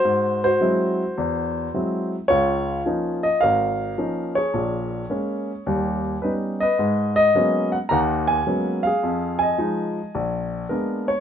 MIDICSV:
0, 0, Header, 1, 2, 480
1, 0, Start_track
1, 0, Tempo, 561272
1, 38, Time_signature, 4, 2, 24, 8
1, 9580, End_track
2, 0, Start_track
2, 0, Title_t, "Grand piano"
2, 0, Program_c, 0, 0
2, 0, Note_on_c, 0, 66, 59
2, 0, Note_on_c, 0, 72, 107
2, 41, Note_on_c, 0, 44, 66
2, 364, Note_off_c, 0, 72, 0
2, 369, Note_off_c, 0, 66, 0
2, 377, Note_on_c, 0, 72, 99
2, 382, Note_on_c, 0, 66, 58
2, 459, Note_off_c, 0, 44, 0
2, 519, Note_on_c, 0, 54, 56
2, 521, Note_on_c, 0, 56, 50
2, 523, Note_on_c, 0, 60, 46
2, 527, Note_on_c, 0, 64, 58
2, 865, Note_off_c, 0, 54, 0
2, 866, Note_off_c, 0, 56, 0
2, 867, Note_off_c, 0, 60, 0
2, 869, Note_off_c, 0, 64, 0
2, 1006, Note_on_c, 0, 40, 71
2, 1422, Note_off_c, 0, 40, 0
2, 1490, Note_on_c, 0, 56, 45
2, 1491, Note_on_c, 0, 54, 52
2, 1492, Note_on_c, 0, 60, 47
2, 1495, Note_on_c, 0, 64, 50
2, 1780, Note_off_c, 0, 72, 0
2, 1782, Note_off_c, 0, 66, 0
2, 1831, Note_off_c, 0, 54, 0
2, 1831, Note_off_c, 0, 56, 0
2, 1832, Note_off_c, 0, 60, 0
2, 1833, Note_off_c, 0, 64, 0
2, 1951, Note_on_c, 0, 73, 104
2, 1968, Note_on_c, 0, 37, 70
2, 1968, Note_on_c, 0, 65, 74
2, 2383, Note_off_c, 0, 37, 0
2, 2401, Note_off_c, 0, 73, 0
2, 2443, Note_on_c, 0, 53, 51
2, 2447, Note_on_c, 0, 61, 45
2, 2449, Note_on_c, 0, 58, 49
2, 2451, Note_on_c, 0, 63, 57
2, 2765, Note_on_c, 0, 75, 83
2, 2788, Note_off_c, 0, 53, 0
2, 2789, Note_off_c, 0, 61, 0
2, 2790, Note_off_c, 0, 58, 0
2, 2791, Note_off_c, 0, 63, 0
2, 2889, Note_off_c, 0, 65, 0
2, 2913, Note_on_c, 0, 77, 102
2, 2921, Note_off_c, 0, 75, 0
2, 2928, Note_on_c, 0, 70, 66
2, 2936, Note_on_c, 0, 32, 73
2, 3347, Note_off_c, 0, 32, 0
2, 3403, Note_on_c, 0, 53, 46
2, 3408, Note_on_c, 0, 58, 47
2, 3410, Note_on_c, 0, 61, 44
2, 3414, Note_on_c, 0, 63, 51
2, 3723, Note_on_c, 0, 73, 86
2, 3737, Note_on_c, 0, 68, 53
2, 3747, Note_off_c, 0, 53, 0
2, 3750, Note_off_c, 0, 58, 0
2, 3751, Note_off_c, 0, 61, 0
2, 3752, Note_off_c, 0, 77, 0
2, 3753, Note_off_c, 0, 63, 0
2, 3850, Note_off_c, 0, 70, 0
2, 3879, Note_on_c, 0, 34, 61
2, 3880, Note_on_c, 0, 46, 67
2, 4297, Note_off_c, 0, 34, 0
2, 4298, Note_off_c, 0, 46, 0
2, 4358, Note_on_c, 0, 56, 49
2, 4361, Note_on_c, 0, 58, 50
2, 4367, Note_on_c, 0, 61, 56
2, 4704, Note_off_c, 0, 56, 0
2, 4706, Note_off_c, 0, 58, 0
2, 4709, Note_off_c, 0, 61, 0
2, 4808, Note_off_c, 0, 68, 0
2, 4845, Note_on_c, 0, 39, 73
2, 4848, Note_on_c, 0, 55, 70
2, 5132, Note_off_c, 0, 73, 0
2, 5260, Note_off_c, 0, 39, 0
2, 5262, Note_off_c, 0, 55, 0
2, 5318, Note_on_c, 0, 71, 65
2, 5328, Note_on_c, 0, 55, 46
2, 5331, Note_on_c, 0, 59, 41
2, 5333, Note_on_c, 0, 61, 42
2, 5335, Note_on_c, 0, 63, 55
2, 5393, Note_off_c, 0, 71, 0
2, 5648, Note_on_c, 0, 75, 90
2, 5669, Note_off_c, 0, 55, 0
2, 5669, Note_on_c, 0, 71, 67
2, 5670, Note_off_c, 0, 59, 0
2, 5672, Note_off_c, 0, 61, 0
2, 5672, Note_off_c, 0, 63, 0
2, 5805, Note_on_c, 0, 44, 68
2, 5806, Note_on_c, 0, 56, 63
2, 6110, Note_off_c, 0, 75, 0
2, 6123, Note_on_c, 0, 75, 108
2, 6220, Note_off_c, 0, 44, 0
2, 6221, Note_off_c, 0, 56, 0
2, 6286, Note_on_c, 0, 54, 57
2, 6287, Note_on_c, 0, 56, 51
2, 6287, Note_on_c, 0, 58, 50
2, 6290, Note_on_c, 0, 59, 49
2, 6293, Note_on_c, 0, 61, 65
2, 6572, Note_off_c, 0, 75, 0
2, 6584, Note_off_c, 0, 71, 0
2, 6603, Note_on_c, 0, 78, 76
2, 6627, Note_off_c, 0, 54, 0
2, 6628, Note_off_c, 0, 56, 0
2, 6628, Note_off_c, 0, 58, 0
2, 6630, Note_off_c, 0, 59, 0
2, 6631, Note_off_c, 0, 61, 0
2, 6646, Note_off_c, 0, 78, 0
2, 6747, Note_on_c, 0, 82, 95
2, 6762, Note_on_c, 0, 39, 80
2, 6766, Note_on_c, 0, 51, 80
2, 6780, Note_on_c, 0, 78, 71
2, 6823, Note_off_c, 0, 82, 0
2, 7077, Note_on_c, 0, 80, 101
2, 7178, Note_off_c, 0, 39, 0
2, 7180, Note_off_c, 0, 51, 0
2, 7241, Note_on_c, 0, 54, 52
2, 7241, Note_on_c, 0, 56, 47
2, 7242, Note_on_c, 0, 58, 48
2, 7246, Note_on_c, 0, 61, 55
2, 7247, Note_on_c, 0, 59, 43
2, 7528, Note_off_c, 0, 80, 0
2, 7551, Note_on_c, 0, 77, 88
2, 7583, Note_on_c, 0, 68, 70
2, 7585, Note_off_c, 0, 54, 0
2, 7585, Note_off_c, 0, 56, 0
2, 7585, Note_off_c, 0, 58, 0
2, 7587, Note_off_c, 0, 59, 0
2, 7587, Note_off_c, 0, 61, 0
2, 7693, Note_off_c, 0, 78, 0
2, 7725, Note_on_c, 0, 41, 67
2, 8029, Note_on_c, 0, 80, 98
2, 8054, Note_off_c, 0, 77, 0
2, 8062, Note_on_c, 0, 75, 65
2, 8139, Note_off_c, 0, 41, 0
2, 8195, Note_on_c, 0, 53, 54
2, 8198, Note_on_c, 0, 56, 52
2, 8200, Note_on_c, 0, 63, 62
2, 8500, Note_off_c, 0, 68, 0
2, 8541, Note_off_c, 0, 53, 0
2, 8543, Note_off_c, 0, 56, 0
2, 8544, Note_off_c, 0, 63, 0
2, 8648, Note_off_c, 0, 75, 0
2, 8677, Note_on_c, 0, 34, 74
2, 9094, Note_off_c, 0, 34, 0
2, 9145, Note_on_c, 0, 70, 70
2, 9151, Note_on_c, 0, 56, 51
2, 9157, Note_on_c, 0, 58, 44
2, 9157, Note_on_c, 0, 59, 47
2, 9158, Note_on_c, 0, 62, 54
2, 9179, Note_off_c, 0, 80, 0
2, 9457, Note_off_c, 0, 70, 0
2, 9476, Note_on_c, 0, 73, 84
2, 9499, Note_off_c, 0, 56, 0
2, 9501, Note_off_c, 0, 58, 0
2, 9501, Note_off_c, 0, 59, 0
2, 9502, Note_off_c, 0, 62, 0
2, 9577, Note_off_c, 0, 73, 0
2, 9580, End_track
0, 0, End_of_file